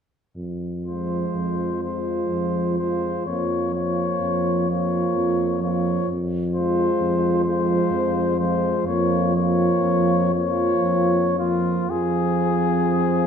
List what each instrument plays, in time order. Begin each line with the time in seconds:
0.36 tuba F2
0.85 trombone F3, euphonium G#3, french horn section F4, cornet C5
1.34 tuba F2
1.83 trombone F3, euphonium G#3, french horn section F4, cornet C5
2.31 tuba F2
2.78 trombone F3, euphonium G#3, french horn section F4, cornet C5
3.26 tuba F2, trombone F3, euphonium A#3, french horn section F4, cornet C#5
3.75 trombone F3, euphonium A#3, french horn section F4, cornet C#5
4.21 tuba F2
4.68 trombone F3, euphonium A#3, french horn section F4, cornet C#5
5.16 tuba F2
5.60 trombone F3, french horn section F4, cornet C#5
5.65 euphonium A#3
6.08 tuba F2
6.54 trombone F3, euphonium G#3, french horn section F4, cornet C5
7.01 tuba F2
7.44 trombone F3, euphonium G#3, french horn section F4, cornet C5
7.91 tuba F2
8.38 trombone F3, euphonium G#3, french horn section F4, cornet C5
8.85 tuba F2, trombone F3, euphonium A#3, french horn section F4, cornet C#5
9.35 trombone F3, euphonium A#3, french horn section F4, cornet C#5
9.82 tuba F2
10.34 trombone F3, euphonium A#3, french horn section F4, cornet C#5
10.82 tuba F2
11.38 trombone F3, euphonium A#3, french horn section F4, cornet F4
11.88 tuba F2, trombone F3, euphonium C4, french horn section F4, cornet G#4